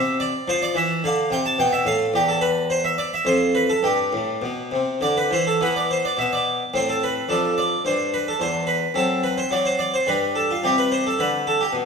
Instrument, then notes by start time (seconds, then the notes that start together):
harpsichord
Already playing: C3 E5
0.20 D5
0.48 F3 C5
0.62 D5
0.75 E3 E5
1.04 D3 F5
1.30 C3 G5
1.46 A5
1.58 B2 G5
1.73 E5
1.85 A2 F5
2.14 E2 G4
2.29 A4
2.41 B4
2.70 C5
2.84 E5
2.98 D5
3.14 E5
3.25 F2 C5
3.55 B4
3.70 A4
3.83 G2 G4
4.13 A2
4.42 B2
4.72 C3
5.01 D3 D5
5.17 B4
5.31 E3 C5
5.47 A4
5.61 E3 B3 B4
5.76 D5
5.91 C5
6.05 D5
6.17 B2 E5
6.33 D5
6.74 A2 C4 C5
6.90 A4
7.03 B4
7.29 F2 D4 A4
7.58 D5
7.85 G2 C5
8.14 B4
8.28 A4
8.40 E2 C5
8.67 B4
8.94 F#2 C4 A4
9.23 B4
9.38 C5
9.51 F#3 D5
9.65 C5
9.79 D5
9.94 C5
10.07 G2 G3 B4
10.36 A4
10.51 F4
10.64 C3 G3 G4
10.78 B4
10.92 C5
11.07 A4
11.19 D3 B4
11.47 A4
11.61 G4
11.73 B2